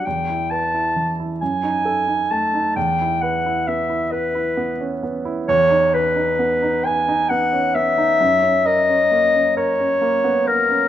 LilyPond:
<<
  \new Staff \with { instrumentName = "Clarinet" } { \time 6/8 \key e \dorian \tempo 4. = 44 g''8 a''8 r8 gis''4 a''8 | g''8 fis''8 e''8 b'4 r8 | \key e \lydian cis''8 b'4 gis''8 fis''8 e''8~ | e''8 dis''4 cis''4 ais'8 | }
  \new Staff \with { instrumentName = "Grand piano" } { \time 6/8 \key e \dorian e,16 e'16 b'16 e'16 e16 e'16 fis,16 dis'16 a'16 dis'16 a16 dis'16 | e,16 e'16 b'16 e'16 b16 e'16 b'16 e'16 b16 cis'16 b16 e'16 | \key e \lydian e,16 dis'16 b'16 dis'16 b16 dis'16 b'16 dis'16 b16 cis'16 b16 dis'16 | fis,16 cis'16 ais'16 cis'16 ais16 cis'16 ais'16 cis'16 ais16 b16 ais16 cis'16 | }
>>